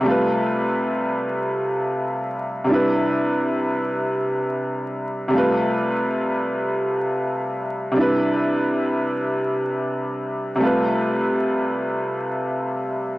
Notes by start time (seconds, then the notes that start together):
0.01 C3 G3
0.06 A3 F4
0.10 B4
2.64 C3 G3
2.69 D4 E4
2.74 B4
5.28 C3 G3
5.33 A3 F4
5.38 B4
7.92 C3 G3
7.96 D4 E4
8.01 B4
10.56 C3 G3
10.60 A3 F4
10.65 B4